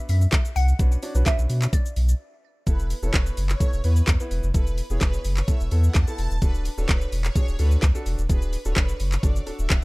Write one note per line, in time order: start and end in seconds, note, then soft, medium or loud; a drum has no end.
0.00 0.20 B3 medium
0.00 0.20 D4 medium
0.00 0.20 F#4 medium
0.00 0.20 B4 loud
0.09 0.27 F#2 loud
0.09 0.53 E5 loud
0.09 open hi-hat medium
0.09 shaker medium
0.21 shaker medium
0.32 kick loud
0.32 snare medium
0.32 clap loud
0.32 closed hi-hat medium
0.32 shaker medium
0.45 shaker medium
0.56 0.73 C2 loud
0.56 1.28 F#5 loud
0.56 open hi-hat medium
0.56 shaker medium
0.68 shaker medium
0.79 0.97 B1 loud
0.79 0.97 C#4 medium
0.79 0.97 D4 medium
0.79 0.97 F#4 medium
0.79 0.97 B4 medium
0.79 kick loud
0.79 closed hi-hat medium
0.79 shaker medium
0.92 shaker soft
1.02 1.12 C#4 medium
1.02 1.12 D4 medium
1.02 1.12 F#4 medium
1.02 1.12 D5 medium
1.02 open hi-hat medium
1.02 shaker medium
1.15 1.23 B1 loud
1.15 1.84 C#4 medium
1.15 1.84 D4 medium
1.15 1.84 F#4 medium
1.15 1.84 B4 medium
1.15 shaker medium
1.26 1.75 E5 loud
1.26 kick loud
1.26 snare medium
1.26 clap loud
1.26 closed hi-hat medium
1.26 shaker medium
1.38 1.47 B1 loud
1.38 shaker medium
1.50 1.67 B2 loud
1.50 open hi-hat medium
1.50 shaker medium
1.62 clap medium
1.62 shaker medium
1.73 2.39 D5 medium
1.73 kick loud
1.73 closed hi-hat medium
1.73 shaker medium
1.86 shaker medium
1.96 2.14 B1 medium
1.96 open hi-hat medium
1.96 shaker medium
2.09 shaker medium
2.67 2.94 E1 loud
2.67 2.93 B3 medium
2.67 2.93 E4 medium
2.67 2.93 A4 medium
2.67 2.78 B4 loud
2.67 kick loud
2.67 closed hi-hat medium
2.67 shaker medium
2.79 shaker soft
2.90 open hi-hat medium
2.90 shaker medium
3.02 3.11 E1 medium
3.02 3.45 B3 medium
3.02 3.45 E4 medium
3.02 3.46 A4 medium
3.02 3.12 C#5 medium
3.02 shaker medium
3.13 3.31 E1 loud
3.13 3.25 B4 medium
3.13 kick loud
3.13 snare medium
3.13 clap loud
3.13 closed hi-hat medium
3.13 shaker medium
3.26 shaker medium
3.37 3.55 F#1 medium
3.37 open hi-hat medium
3.37 shaker medium
3.49 3.70 C#5 medium
3.49 clap medium
3.49 shaker medium
3.60 3.78 B3 medium
3.60 3.78 E4 medium
3.60 3.78 A4 medium
3.60 kick loud
3.60 closed hi-hat medium
3.60 shaker medium
3.73 3.81 E1 medium
3.73 shaker medium
3.84 4.02 E2 loud
3.84 4.10 B3 medium
3.84 4.10 E4 medium
3.84 3.95 B4 medium
3.84 4.10 B4 medium
3.84 open hi-hat medium
3.84 shaker medium
3.96 shaker medium
4.07 4.17 E2 medium
4.07 kick loud
4.07 snare medium
4.07 clap loud
4.07 closed hi-hat medium
4.07 shaker medium
4.20 4.45 B3 medium
4.20 4.46 E4 medium
4.20 4.46 B4 loud
4.20 shaker medium
4.31 4.40 E1 medium
4.31 open hi-hat medium
4.31 shaker medium
4.43 4.52 F1 medium
4.43 shaker medium
4.54 4.81 E1 loud
4.54 4.80 B3 medium
4.54 4.80 E4 medium
4.54 4.80 A4 medium
4.54 4.65 B4 loud
4.54 kick loud
4.54 closed hi-hat medium
4.54 shaker medium
4.67 shaker soft
4.78 open hi-hat medium
4.78 shaker medium
4.90 4.98 E1 medium
4.90 5.33 B3 medium
4.90 5.33 E4 medium
4.90 5.33 G#4 medium
4.90 5.00 C#5 medium
4.90 shaker medium
5.01 5.19 E1 medium
5.01 5.12 B4 medium
5.01 kick loud
5.01 snare medium
5.01 clap loud
5.01 closed hi-hat medium
5.01 shaker medium
5.14 shaker medium
5.25 5.42 F#1 medium
5.25 open hi-hat medium
5.25 shaker medium
5.37 5.47 C#5 medium
5.37 clap medium
5.37 shaker medium
5.48 5.66 B3 medium
5.48 5.66 E4 medium
5.48 5.66 A4 medium
5.48 5.59 E5 medium
5.48 kick loud
5.48 closed hi-hat medium
5.48 shaker medium
5.60 5.69 E1 medium
5.60 shaker medium
5.71 5.89 E2 loud
5.71 5.97 B3 medium
5.71 5.97 E4 medium
5.71 5.98 A4 medium
5.71 open hi-hat medium
5.71 shaker soft
5.84 5.94 F#5 medium
5.84 shaker medium
5.94 6.05 E2 loud
5.94 6.29 A5 medium
5.94 kick loud
5.94 snare medium
5.94 clap loud
5.94 closed hi-hat medium
5.94 shaker medium
6.07 6.33 B3 medium
6.07 6.33 E4 medium
6.07 6.33 A4 medium
6.07 shaker medium
6.18 6.28 E1 medium
6.18 open hi-hat medium
6.18 shaker medium
6.31 6.39 D#1 medium
6.31 shaker medium
6.42 6.69 D1 loud
6.42 6.68 D4 medium
6.42 6.68 F#4 medium
6.42 6.68 A4 medium
6.42 6.53 B4 loud
6.42 kick loud
6.42 closed hi-hat medium
6.42 shaker medium
6.54 shaker soft
6.65 open hi-hat medium
6.65 shaker medium
6.78 6.86 D1 medium
6.78 7.20 D4 medium
6.78 7.21 F#4 medium
6.78 7.21 A4 medium
6.78 6.88 C#5 medium
6.78 shaker medium
6.89 7.07 D1 medium
6.89 7.00 B4 medium
6.89 kick loud
6.89 snare medium
6.89 clap loud
6.89 closed hi-hat medium
6.89 shaker medium
7.01 shaker medium
7.12 7.30 E1 medium
7.12 open hi-hat medium
7.12 shaker medium
7.25 7.46 C#5 medium
7.25 clap medium
7.25 shaker medium
7.36 7.53 D4 medium
7.36 7.53 F#4 medium
7.36 7.54 G#4 medium
7.36 kick loud
7.36 closed hi-hat medium
7.36 shaker medium
7.48 7.56 D1 loud
7.48 shaker medium
7.59 7.77 D2 loud
7.59 7.85 D4 medium
7.59 7.85 F#4 medium
7.59 7.85 A4 medium
7.59 7.70 B4 medium
7.59 open hi-hat medium
7.59 shaker medium
7.71 shaker medium
7.82 7.92 D2 loud
7.82 kick loud
7.82 snare medium
7.82 clap loud
7.82 closed hi-hat medium
7.82 shaker medium
7.95 8.20 D4 medium
7.95 8.21 F#4 medium
7.95 8.21 A4 loud
7.95 shaker medium
8.06 8.15 E1 loud
8.06 open hi-hat medium
8.06 shaker medium
8.18 8.27 D#1 medium
8.18 shaker medium
8.29 8.56 D1 loud
8.29 8.55 D4 medium
8.29 8.55 F#4 medium
8.29 8.55 G#4 medium
8.29 8.40 B4 loud
8.29 kick loud
8.29 closed hi-hat medium
8.29 shaker medium
8.42 shaker soft
8.53 open hi-hat medium
8.53 shaker medium
8.65 8.74 D1 loud
8.65 9.08 D4 medium
8.65 9.08 F#4 medium
8.65 9.08 A4 medium
8.65 8.75 C#5 medium
8.65 shaker medium
8.76 8.94 E1 medium
8.76 8.87 B4 medium
8.76 kick loud
8.76 snare medium
8.76 clap loud
8.76 closed hi-hat medium
8.76 shaker medium
8.89 shaker medium
9.00 9.17 F#1 medium
9.00 open hi-hat medium
9.00 shaker medium
9.12 9.22 C#5 medium
9.12 clap medium
9.12 shaker medium
9.23 9.41 F#1 loud
9.23 9.41 D4 medium
9.23 9.41 F#4 medium
9.23 9.41 A4 medium
9.23 9.34 D5 medium
9.23 kick loud
9.23 closed hi-hat medium
9.23 shaker medium
9.36 shaker medium
9.46 9.52 D1 soft
9.46 9.72 D4 medium
9.46 9.72 F#4 medium
9.46 9.73 A4 medium
9.46 open hi-hat medium
9.46 shaker soft
9.59 9.67 D1 medium
9.59 9.69 E5 medium
9.59 shaker medium
9.70 9.84 D1 medium
9.70 9.84 F#5 medium
9.70 kick loud
9.70 snare medium
9.70 clap loud
9.70 closed hi-hat medium
9.70 shaker medium